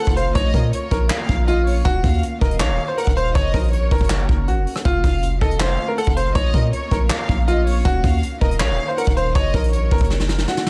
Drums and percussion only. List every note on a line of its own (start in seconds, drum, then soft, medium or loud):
0.04 kick loud
0.04 closed hi-hat medium
0.10 closed hi-hat soft
0.17 closed hi-hat medium
0.35 kick loud
0.35 closed hi-hat medium
0.54 kick loud
0.54 closed hi-hat medium
0.73 closed hi-hat medium
0.91 kick loud
0.91 closed hi-hat medium
1.10 snare loud
1.10 clap loud
1.29 kick loud
1.48 closed hi-hat medium
1.67 open hi-hat medium
1.85 kick loud
1.85 closed hi-hat medium
2.04 kick loud
2.04 closed hi-hat medium
2.09 closed hi-hat medium
2.13 closed hi-hat soft
2.18 closed hi-hat soft
2.23 closed hi-hat medium
2.41 kick loud
2.41 closed hi-hat soft
2.51 closed hi-hat medium
2.60 snare loud
2.60 clap loud
2.98 closed hi-hat medium
3.04 kick loud
3.04 closed hi-hat medium
3.10 closed hi-hat soft
3.17 closed hi-hat medium
3.35 kick loud
3.35 closed hi-hat medium
3.54 kick loud
3.54 closed hi-hat medium
3.59 closed hi-hat medium
3.63 closed hi-hat medium
3.68 closed hi-hat medium
3.73 closed hi-hat medium
3.91 kick loud
3.91 closed hi-hat soft
3.98 kick loud
3.98 closed hi-hat medium
4.04 closed hi-hat medium
4.10 snare loud
4.10 clap loud
4.29 kick loud
4.48 closed hi-hat medium
4.67 open hi-hat medium
4.76 cross-stick loud
4.85 kick loud
4.85 closed hi-hat medium
5.04 kick loud
5.04 closed hi-hat medium
5.09 closed hi-hat medium
5.13 closed hi-hat soft
5.18 closed hi-hat soft
5.23 closed hi-hat medium
5.41 kick loud
5.41 closed hi-hat soft
5.51 closed hi-hat medium
5.60 snare loud
5.60 clap loud
5.98 closed hi-hat medium
6.04 kick loud
6.04 closed hi-hat medium
6.10 closed hi-hat soft
6.17 closed hi-hat medium
6.35 kick loud
6.35 closed hi-hat medium
6.54 kick loud
6.54 closed hi-hat medium
6.73 closed hi-hat medium
6.91 kick loud
6.91 closed hi-hat medium
7.10 snare loud
7.10 clap loud
7.29 kick loud
7.48 closed hi-hat medium
7.67 open hi-hat medium
7.85 kick loud
7.85 closed hi-hat medium
8.04 kick loud
8.04 closed hi-hat medium
8.09 closed hi-hat medium
8.13 closed hi-hat soft
8.18 closed hi-hat soft
8.23 closed hi-hat medium
8.41 kick loud
8.41 closed hi-hat soft
8.51 closed hi-hat medium
8.60 snare loud
8.60 clap loud
8.98 closed hi-hat medium
9.04 kick loud
9.04 closed hi-hat medium
9.10 closed hi-hat soft
9.17 closed hi-hat medium
9.35 kick loud
9.35 closed hi-hat medium
9.54 kick loud
9.54 closed hi-hat medium
9.59 closed hi-hat medium
9.63 closed hi-hat medium
9.68 closed hi-hat medium
9.73 closed hi-hat medium
9.91 kick loud
9.91 closed hi-hat soft
9.98 kick loud
9.98 closed hi-hat medium
10.04 closed hi-hat medium
10.10 snare medium
10.20 snare medium
10.29 snare medium
10.38 snare medium
10.48 snare medium
10.57 snare medium
10.66 snare loud